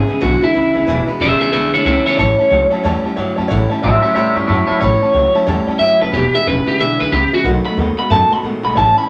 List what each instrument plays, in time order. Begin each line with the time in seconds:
Already playing: clean electric guitar G#4
0.07 clean electric guitar E2 C#3, steel-string acoustic guitar E3 G#3 D4 E4, upright piano B4 E5 G#5, muted upright bass stroke
0.21 upright bass B1, steel-string acoustic guitar E2 B2 E3 G#3 D4 E4, clean electric guitar E2 D3 F#4, upright piano B4 E5 G#5
0.41 clean electric guitar E2 D3 E4, steel-string acoustic guitar E3 G#3 D4 E4, upright piano B4 E5 G#5, muted upright bass stroke
0.54 upright bass D2, clean electric guitar E2 C#3, steel-string acoustic guitar E3 G#3 D4 E4, upright piano B4 E5 B5
0.74 upright bass C#2, clean electric guitar E2 C#3, steel-string acoustic guitar E3 G#3 D4 E4, upright piano B4 E5 G#5
0.86 upright bass E1, clean electric guitar E2 B2, steel-string acoustic guitar E2 B2 E3 G#3 D4 E4, upright piano B4 E5 G#5
1.06 clean electric guitar E2 B2, steel-string acoustic guitar G#3 D4 E4, upright piano B4 E5 B5, muted upright bass stroke
1.11 steel-string acoustic guitar E3
1.19 upright bass E1, clean electric guitar E2 C#3 G#4 E5, steel-string acoustic guitar E3 G#3 D4, upright piano B4 E5 B5
1.23 steel-string acoustic guitar E4
1.39 clean electric guitar E2 C#3 G#4 E5, steel-string acoustic guitar G#3 D4 E4, upright piano B4 E5 G#5, muted upright bass stroke
1.44 steel-string acoustic guitar E3
1.51 upright bass B1, steel-string acoustic guitar E2 B2 E3 G#3 D4 E4, clean electric guitar E2 D3 G#4 E5, upright piano B4 E5 G#5
1.72 upright bass D2, clean electric guitar E2 D3 E4 C#5, steel-string acoustic guitar G#3 D4 E4, upright piano B4 E5 G#5
1.76 steel-string acoustic guitar E3
1.84 upright bass C#2, clean electric guitar E2 C#3 E4 C#5, steel-string acoustic guitar E3 G#3 D4, upright piano B4 E5 G#5
1.88 steel-string acoustic guitar E4
2.04 clean electric guitar E2 C#3 E4 C#5, steel-string acoustic guitar G#3 D4 E4, upright piano B4 E5 G#5, muted upright bass stroke
2.09 steel-string acoustic guitar E3
2.17 upright bass A1, clean electric guitar A2 E3 C#5, steel-string acoustic guitar A2 E3 G3 C#4 E4, upright piano C#5 E5 A5
2.37 clean electric guitar A2 E3, steel-string acoustic guitar G3 C#4 E4, upright piano C#5 E5 A5, muted upright bass stroke
2.50 upright bass C#2, clean electric guitar A2 F#3, steel-string acoustic guitar E3 G3 C#4 E4, upright piano C#5 E5 A5
2.70 clean electric guitar A2 F#3, steel-string acoustic guitar G3 C#4 E4, upright piano C#5 E5 A5, muted upright bass stroke
2.83 upright bass E2, clean electric guitar A2 G3, steel-string acoustic guitar A2 E3 G3 C#4 E4, upright piano C#5 E5 A5
3.03 clean electric guitar A2 G3, steel-string acoustic guitar G3 C#4 E4, upright piano C#5 E5 A5, muted upright bass stroke
3.16 upright bass G2, clean electric guitar A2 F#3, steel-string acoustic guitar E3 G3 C#4 E4, upright piano C#5 E5 F#5
3.36 upright bass F#2, clean electric guitar A2 F#3, steel-string acoustic guitar E4, upright piano C#5 E5 A5
3.40 steel-string acoustic guitar G3 C#4
3.48 upright bass A1, clean electric guitar A2 E3, steel-string acoustic guitar A2 E3 G3 C#4 E4, upright piano C#5 E5 F#5
3.69 clean electric guitar A2 E3, steel-string acoustic guitar C#4 E4, upright piano C#5 E5 A5, muted upright bass stroke
3.74 steel-string acoustic guitar G3
3.82 upright bass A1, clean electric guitar A2 F#3 G4 E5, steel-string acoustic guitar E3 G3 C#4, upright piano C#5 E5 G5
3.86 steel-string acoustic guitar E4
4.02 clean electric guitar A2 F#3 G4 E5, steel-string acoustic guitar C#4 E4, upright piano C#5 E5 F#5, muted upright bass stroke
4.06 steel-string acoustic guitar G3
4.14 upright bass E2, clean electric guitar A2 G3 G4 E5, steel-string acoustic guitar A2 E3 G3 C#4, upright piano C#5 E5 B5
4.18 steel-string acoustic guitar E4
4.35 upright bass G2, clean electric guitar A2 G3 E4 C#5, steel-string acoustic guitar G3 C#4 E4, upright piano C#5 E5 A5
4.47 upright bass F#2, clean electric guitar A2 F#3 E4 C#5, steel-string acoustic guitar E3 G3, upright piano C#5 E5 A5
4.51 steel-string acoustic guitar C#4 E4
4.67 clean electric guitar A2 F#3 E4 C#5, steel-string acoustic guitar C#4 E4, upright piano C#5 E5 B5, muted upright bass stroke
4.72 steel-string acoustic guitar G3
4.80 upright bass A1, steel-string acoustic guitar A2 E3 G3 C#4 E4, clean electric guitar A2 E3 C#5, upright piano C#5 E5 B5
5.01 clean electric guitar A2 E3, steel-string acoustic guitar C#4 E4, upright piano C#5 E5 A5, muted upright bass stroke
5.05 steel-string acoustic guitar G3
5.13 upright bass C#2, clean electric guitar A2 F#3, steel-string acoustic guitar E3 G3 C#4 E4, upright piano C#5 E5 F#5
5.34 clean electric guitar A2 F#3, steel-string acoustic guitar C#4 E4, upright piano C#5 E5 A5, muted upright bass stroke
5.38 steel-string acoustic guitar G3
5.46 upright bass E2, clean electric guitar A2 G3, steel-string acoustic guitar A2 E3 G3 C#4 E4, upright piano C#5 E5 A5
5.67 clean electric guitar A2 G3, steel-string acoustic guitar G3 C#4 E4, upright piano C#5 E5 A5, muted upright bass stroke
5.79 upright bass G2, clean electric guitar A2 F#3 E5, steel-string acoustic guitar E3 G3 C#4, upright piano C#5 E5 G5
5.83 steel-string acoustic guitar E4
5.99 upright bass F#1, clean electric guitar A2 F#3 B4, steel-string acoustic guitar C#4 E4, upright piano C#5 E5 A5
6.05 steel-string acoustic guitar G3
6.12 upright bass E1, clean electric guitar E2 B2 G4, steel-string acoustic guitar E2 B2 E3 G#3 D4, upright piano B4 E5 G#5
6.16 steel-string acoustic guitar E4
6.33 clean electric guitar E2 B2 E5, steel-string acoustic guitar E3 G#3 D4 E4, upright piano B4 E5 G#5, muted upright bass stroke
6.46 upright bass E1, clean electric guitar E2 C#3 B4, steel-string acoustic guitar E3 G#3 D4 E4, upright piano B4 E5 G#5
6.66 clean electric guitar E2 C#3 G4, steel-string acoustic guitar G#3 D4 E4, upright piano B4 E5 F#5, muted upright bass stroke
6.70 steel-string acoustic guitar E3
6.79 upright bass B1, steel-string acoustic guitar E2 B2 E3 G#3 D4 E4, clean electric guitar E2 D3 E5, upright piano B4 E5 G#5
6.98 upright bass D2, clean electric guitar E2 D3 B4, steel-string acoustic guitar G#3 D4 E4, upright piano B4 E5 G#5
7.03 steel-string acoustic guitar E3
7.11 upright bass C#2, clean electric guitar E2 C#3 G4, steel-string acoustic guitar E3 G#3 D4 E4, upright piano B4 E5 B5
7.32 clean electric guitar E2 C#3 F#4, steel-string acoustic guitar E3 G#3 D4 E4, upright piano B4 E5 G#5, muted upright bass stroke
7.44 upright bass B1, steel-string acoustic guitar B2 D#3 A3 B3 F#4, clean electric guitar B2 F#3, upright piano B4 D#5 F#5
7.64 clean electric guitar B2 F#3 B5, steel-string acoustic guitar A3 B3 F#4, upright piano B4 D#5 F#5, muted upright bass stroke
7.76 upright bass D#2, clean electric guitar B2 G#3, steel-string acoustic guitar D#3 A3 B3, upright piano B4 D#5 F#5
7.81 steel-string acoustic guitar F#4
7.97 clean electric guitar B2 G#3 B5, steel-string acoustic guitar A3 B3 F#4, upright piano B4 D#5 F#5, muted upright bass stroke
8.10 upright bass F#2, steel-string acoustic guitar B2 D#3 A3 B3 F#4, clean electric guitar B2 A3 A5, upright piano B4 D#5 F#5
8.30 clean electric guitar B2 A3 B5, steel-string acoustic guitar B3 F#4, upright piano B4 D#5 A5, muted upright bass stroke
8.34 steel-string acoustic guitar A3
8.42 upright bass A2, clean electric guitar B2 G#3, steel-string acoustic guitar D#3 A3 B3, upright piano B4 D#5 F#5
8.46 steel-string acoustic guitar F#4
8.63 upright bass B1, clean electric guitar B2 G#3 B5, steel-string acoustic guitar B3 F#4, upright piano B4 D#5 G#5
8.67 steel-string acoustic guitar A3
8.75 upright bass A1, clean electric guitar A2 E3 A5, steel-string acoustic guitar A2 E3 G3 C#4 E4, upright piano C#5 E5 A5
8.95 clean electric guitar A2 E3 B5, steel-string acoustic guitar E4, upright piano C#5 E5 A5, muted upright bass stroke
8.99 steel-string acoustic guitar G3 C#4